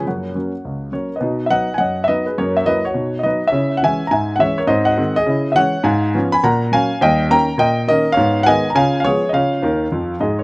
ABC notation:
X:1
M:4/4
L:1/16
Q:"Swing" 1/4=207
K:F#
V:1 name="Grand piano"
[Fcf]12 [Ac]3 [Bd]- | [K:B] [Bd]3 e [df]3 g [df]3 e [Bd]2 [GB]2 | [Ac]2 [ce]2 [Bd]2 [Fc]4- [Fc] d [Bd]3 [ce]- | [ce]3 f [eg]3 a [eg]3 f [ce]2 [Ac]2 |
[^Bd]2 [df]4 [Gd]4- [Gd] e [cf]4 | [K:C#mix] [eg]6 [gb]2 [fa]4 [eg]4 | [d=g]4 [ga]4 [dg]4 [Ad]3 [ce]- | [ce]3 f [dg]3 a [eg]3 e [Gc]3 d |
[ce]12 [Gd]2 [Ac]2 |]
V:2 name="Grand piano" clef=bass
[F,,A,]4 [F,A,C]4 C,,4 [F,A,C]4 | [K:B] [B,,D]4 [F,B,D]4 F,,4 [F,B,D]4 | [F,,A,]4 [F,A,E]4 [B,,D]4 [F,B,D]4 | [C,E]4 [E,G,C]4 G,,4 [E,G,C]4 |
[G,,^B,]4 [D,G,B,]4 [C,E]4 [E,G,C]4 | [K:C#mix] G,,4 [E,B,C]4 A,,4 [F,A,C]4 | [D,,=G,]4 [D,A,C]4 A,,4 [D,A,C]4 | [G,,B,]4 [D,G,B,]4 [C,E]4 [E,G,B,]4 |
[C,E]4 [D,,D,]4 [E,,E,]4 [G,,G,]4 |]